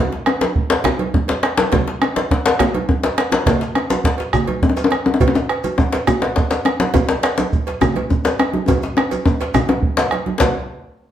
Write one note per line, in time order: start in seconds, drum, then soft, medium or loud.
0.12 djembe slap medium
0.12 high conga soft
0.26 bombo rim loud
0.26 cowbell medium
0.26 djembe tone loud
0.41 cowbell medium
0.41 djembe slap medium
0.41 djembe tone medium
0.41 high conga medium
0.56 bombo low loud
0.56 high conga soft
0.70 cowbell medium
0.70 djembe slap loud
0.70 djembe slap medium
0.84 bombo rim loud
0.84 djembe slap medium
0.84 low conga medium
0.84 djembe bass medium
0.99 bombo rim soft
0.99 cowbell soft
0.99 high conga medium
1.14 bombo low loud
1.14 djembe tone medium
1.14 high conga soft
1.28 bombo rim soft
1.28 cowbell medium
1.28 djembe slap medium
1.43 bombo rim loud
1.43 cowbell medium
1.43 djembe slap medium
1.57 djembe slap loud
1.57 djembe slap soft
1.57 high conga medium
1.57 djembe tone medium
1.72 bombo rim soft
1.72 bombo low loud
1.72 cowbell medium
1.72 djembe slap medium
1.72 low conga medium
1.72 djembe bass medium
1.88 bombo rim soft
1.88 djembe slap medium
2.02 bombo rim loud
2.02 cowbell medium
2.02 djembe tone loud
2.02 high conga soft
2.16 cowbell medium
2.16 djembe slap medium
2.16 djembe tone medium
2.16 high conga medium
2.31 bombo rim soft
2.31 bombo low medium
2.31 djembe slap medium
2.46 djembe slap loud
2.46 djembe slap medium
2.59 bombo rim loud
2.59 djembe slap medium
2.59 djembe bass medium
2.59 low conga medium
2.74 cowbell medium
2.74 high conga medium
2.74 djembe tone medium
2.89 bombo low loud
2.89 djembe tone medium
2.89 high conga soft
3.03 bombo rim soft
3.03 cowbell soft
3.03 djembe slap medium
3.18 bombo rim loud
3.18 cowbell medium
3.18 djembe slap medium
3.32 djembe slap soft
3.32 djembe slap loud
3.32 high conga medium
3.32 djembe tone medium
3.46 bombo low loud
3.46 cowbell medium
3.46 djembe slap loud
3.46 low conga medium
3.46 djembe bass medium
3.46 shekere medium
3.61 djembe slap medium
3.61 high conga soft
3.61 shekere soft
3.75 bombo rim loud
3.75 cowbell medium
3.75 djembe tone loud
3.90 cowbell medium
3.90 djembe slap medium
3.90 high conga medium
3.90 djembe tone medium
3.90 shekere medium
4.04 bombo low loud
4.04 djembe slap medium
4.04 high conga soft
4.04 shekere soft
4.18 cowbell medium
4.18 djembe slap medium
4.18 shekere soft
4.33 bombo rim loud
4.33 djembe bass medium
4.33 low conga medium
4.33 shekere medium
4.48 cowbell medium
4.48 djembe tone medium
4.48 high conga medium
4.62 bombo low loud
4.62 djembe tone loud
4.62 high conga soft
4.62 shekere soft
4.69 djembe tone medium
4.77 bombo rim soft
4.77 cowbell medium
4.77 djembe slap medium
4.77 shekere soft
4.84 djembe tone loud
4.91 bombo rim loud
4.91 cowbell medium
4.91 djembe tone medium
5.06 djembe tone loud
5.06 high conga medium
5.06 djembe tone medium
5.14 djembe tone medium
5.20 bombo low loud
5.20 cowbell medium
5.20 low conga medium
5.20 djembe bass medium
5.20 shekere medium
5.28 djembe tone loud
5.35 djembe slap medium
5.35 djembe tone medium
5.35 high conga soft
5.35 shekere soft
5.49 bombo rim loud
5.49 cowbell medium
5.64 cowbell medium
5.64 djembe tone medium
5.64 high conga medium
5.64 shekere medium
5.78 bombo low loud
5.78 djembe tone loud
5.78 high conga soft
5.78 shekere soft
5.92 cowbell medium
5.92 djembe slap medium
5.92 shekere soft
6.07 bombo rim loud
6.07 djembe tone medium
6.07 low conga medium
6.07 djembe bass medium
6.07 shekere medium
6.22 bombo rim soft
6.22 cowbell medium
6.22 djembe slap medium
6.22 djembe tone medium
6.36 bombo low loud
6.36 djembe slap medium
6.36 shekere soft
6.50 bombo rim soft
6.50 cowbell medium
6.50 djembe slap medium
6.50 shekere soft
6.65 bombo rim loud
6.65 cowbell medium
6.65 djembe tone loud
6.80 djembe slap soft
6.80 djembe slap medium
6.80 high conga medium
6.80 djembe tone medium
6.94 bombo low loud
6.94 cowbell medium
6.94 djembe tone medium
6.94 low conga medium
6.94 djembe bass medium
6.94 shekere medium
7.09 djembe slap medium
7.09 high conga soft
7.09 shekere soft
7.23 bombo rim loud
7.23 cowbell medium
7.23 djembe slap medium
7.38 cowbell medium
7.38 djembe slap medium
7.38 high conga medium
7.38 djembe tone medium
7.38 shekere medium
7.52 bombo low loud
7.52 high conga soft
7.52 shekere soft
7.67 cowbell medium
7.67 djembe slap medium
7.67 shekere soft
7.81 bombo rim loud
7.81 djembe tone loud
7.81 low conga medium
7.81 djembe bass medium
7.81 shekere medium
7.96 bombo rim soft
7.96 cowbell medium
7.96 high conga medium
7.96 djembe tone medium
8.10 bombo low loud
8.10 high conga soft
8.10 djembe tone medium
8.10 shekere soft
8.25 bombo rim soft
8.25 cowbell medium
8.25 djembe slap medium
8.25 shekere medium
8.39 bombo rim loud
8.39 cowbell medium
8.39 djembe tone loud
8.53 djembe slap soft
8.53 high conga medium
8.53 djembe tone medium
8.68 bombo rim soft
8.68 bombo low loud
8.68 cowbell medium
8.68 djembe tone loud
8.68 low conga medium
8.68 djembe bass medium
8.68 shekere medium
8.82 djembe slap medium
8.82 high conga soft
8.82 shekere soft
8.97 bombo rim loud
8.97 cowbell medium
8.97 djembe tone loud
9.11 cowbell medium
9.11 high conga medium
9.11 djembe tone medium
9.11 shekere medium
9.26 bombo low loud
9.26 djembe tone loud
9.26 high conga soft
9.26 shekere soft
9.40 cowbell medium
9.40 djembe slap medium
9.40 shekere soft
9.54 bombo rim loud
9.54 djembe slap soft
9.54 djembe tone loud
9.54 low conga medium
9.54 djembe bass medium
9.54 shekere medium
9.69 bombo rim soft
9.69 cowbell medium
9.69 high conga medium
9.69 djembe tone loud
9.69 djembe tone medium
9.82 bombo low loud
9.97 cowbell medium
9.97 djembe slap loud
9.97 low conga soft
9.97 shekere soft
9.99 djembe slap medium
10.11 bombo rim loud
10.11 cowbell medium
10.11 djembe slap soft
10.11 high conga medium
10.26 high conga medium
10.26 djembe tone medium
10.40 bombo low medium
10.40 cowbell medium
10.40 djembe slap loud
10.40 low conga medium
10.40 djembe bass loud
10.40 shekere medium